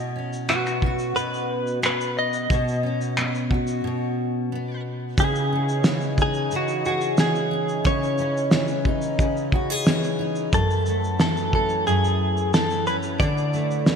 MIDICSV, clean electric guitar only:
0, 0, Header, 1, 2, 480
1, 0, Start_track
1, 0, Tempo, 668896
1, 1790, Time_signature, 4, 2, 24, 8
1, 10016, End_track
2, 0, Start_track
2, 0, Title_t, "Clean electric guitar"
2, 0, Program_c, 0, 27
2, 357, Note_on_c, 0, 66, 81
2, 832, Note_on_c, 0, 71, 93
2, 847, Note_off_c, 0, 66, 0
2, 1282, Note_off_c, 0, 71, 0
2, 1333, Note_on_c, 0, 71, 83
2, 1565, Note_off_c, 0, 71, 0
2, 1568, Note_on_c, 0, 75, 92
2, 3456, Note_off_c, 0, 75, 0
2, 3732, Note_on_c, 0, 68, 76
2, 4454, Note_off_c, 0, 68, 0
2, 4462, Note_on_c, 0, 68, 84
2, 4695, Note_off_c, 0, 68, 0
2, 4709, Note_on_c, 0, 66, 84
2, 4916, Note_off_c, 0, 66, 0
2, 4925, Note_on_c, 0, 66, 83
2, 5166, Note_off_c, 0, 66, 0
2, 5168, Note_on_c, 0, 68, 86
2, 5642, Note_off_c, 0, 68, 0
2, 5644, Note_on_c, 0, 73, 82
2, 6568, Note_off_c, 0, 73, 0
2, 7566, Note_on_c, 0, 69, 73
2, 8035, Note_off_c, 0, 69, 0
2, 8043, Note_on_c, 0, 69, 93
2, 8279, Note_off_c, 0, 69, 0
2, 8287, Note_on_c, 0, 69, 84
2, 8515, Note_off_c, 0, 69, 0
2, 8518, Note_on_c, 0, 68, 88
2, 8996, Note_off_c, 0, 68, 0
2, 8998, Note_on_c, 0, 69, 81
2, 9233, Note_off_c, 0, 69, 0
2, 9236, Note_on_c, 0, 71, 95
2, 9299, Note_off_c, 0, 71, 0
2, 9470, Note_on_c, 0, 74, 84
2, 10016, Note_off_c, 0, 74, 0
2, 10016, End_track
0, 0, End_of_file